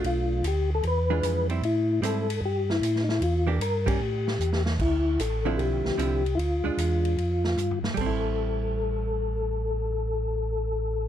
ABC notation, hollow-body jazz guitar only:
X:1
M:4/4
L:1/8
Q:"Swing" 1/4=151
K:Am
V:1 name="Hollow-body jazz guitar"
[A,DF]2 z3 [E,^G,DF]2 [=G,CE] | z2 [G,CE] z4 z | z [E,_B,DG] z [G,B,^C] z4 | z3 [D,F,CE]3 [D,F,CE] z |
z [_A,DF]3 z4 | [G,CE]8- | [G,CE]8 |]